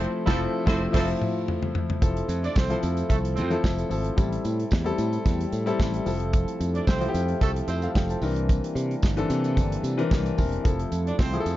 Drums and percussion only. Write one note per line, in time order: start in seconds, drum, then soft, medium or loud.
0.27 kick loud
0.27 snare medium
0.67 kick loud
0.67 snare loud
0.94 kick loud
0.94 snare loud
0.94 crash medium
1.22 mid tom medium
1.48 floor tom medium
1.63 floor tom medium
1.75 floor tom loud
1.90 floor tom loud
2.02 kick loud
2.02 closed hi-hat medium
2.02 tambourine soft
2.17 closed hi-hat medium
2.29 closed hi-hat medium
2.29 tambourine soft
2.44 closed hi-hat soft
2.44 tambourine soft
2.55 kick loud
2.55 snare loud
2.55 tambourine medium
2.70 closed hi-hat soft
2.83 closed hi-hat medium
2.83 tambourine medium
2.97 closed hi-hat soft
2.97 tambourine soft
3.10 kick loud
3.10 closed hi-hat medium
3.10 tambourine medium
3.25 closed hi-hat medium
3.37 closed hi-hat medium
3.37 tambourine soft
3.50 closed hi-hat soft
3.50 tambourine soft
3.64 kick medium
3.64 snare medium
3.64 tambourine medium
3.78 closed hi-hat soft
3.78 tambourine soft
3.91 open hi-hat medium
3.91 tambourine medium
4.04 closed hi-hat soft
4.18 kick loud
4.18 closed hi-hat medium
4.18 tambourine medium
4.33 closed hi-hat medium
4.44 closed hi-hat medium
4.44 tambourine soft
4.60 closed hi-hat soft
4.71 kick loud
4.71 snare loud
4.71 tambourine medium
4.86 closed hi-hat medium
4.98 closed hi-hat medium
4.98 tambourine medium
5.13 closed hi-hat soft
5.13 tambourine soft
5.26 kick loud
5.26 snare soft
5.26 closed hi-hat medium
5.26 tambourine medium
5.41 closed hi-hat medium
5.52 closed hi-hat medium
5.52 tambourine soft
5.67 closed hi-hat soft
5.67 tambourine soft
5.80 kick loud
5.80 snare medium
5.80 tambourine loud
5.94 closed hi-hat soft
6.06 open hi-hat medium
6.06 tambourine medium
6.20 closed hi-hat soft
6.33 kick loud
6.33 closed hi-hat medium
6.33 tambourine soft
6.48 closed hi-hat medium
6.60 closed hi-hat medium
6.60 tambourine soft
6.75 closed hi-hat soft
6.87 kick loud
6.87 snare loud
6.87 tambourine medium
7.01 closed hi-hat soft
7.14 closed hi-hat medium
7.14 tambourine medium
7.28 closed hi-hat soft
7.41 kick loud
7.41 snare soft
7.41 closed hi-hat medium
7.41 tambourine medium
7.56 closed hi-hat medium
7.68 closed hi-hat medium
7.68 tambourine medium
7.82 closed hi-hat soft
7.82 tambourine soft
7.95 kick loud
7.95 snare medium
7.95 tambourine medium
8.09 closed hi-hat medium
8.09 tambourine soft
8.22 open hi-hat medium
8.22 tambourine medium
8.36 closed hi-hat soft
8.49 kick loud
8.49 closed hi-hat medium
8.49 tambourine soft
8.64 closed hi-hat medium
8.76 closed hi-hat medium
8.76 tambourine soft
8.91 closed hi-hat soft
9.03 kick loud
9.03 snare medium
9.03 tambourine medium
9.17 closed hi-hat soft
9.30 closed hi-hat medium
9.30 tambourine medium
9.44 closed hi-hat soft
9.44 tambourine soft
9.57 kick medium
9.57 closed hi-hat medium
9.57 tambourine medium
9.72 closed hi-hat medium
9.84 closed hi-hat medium
9.84 tambourine medium
9.99 closed hi-hat soft
10.11 kick loud
10.11 snare loud
10.11 tambourine medium
10.25 closed hi-hat soft
10.25 tambourine soft
10.38 kick medium
10.38 open hi-hat medium
10.38 tambourine medium
10.52 closed hi-hat soft
10.65 kick loud
10.65 closed hi-hat medium
10.65 tambourine medium
10.79 closed hi-hat medium
10.92 closed hi-hat medium
10.92 tambourine soft
11.07 closed hi-hat soft
11.19 kick loud
11.19 snare loud
11.19 tambourine medium
11.33 closed hi-hat soft
11.46 closed hi-hat medium
11.46 tambourine medium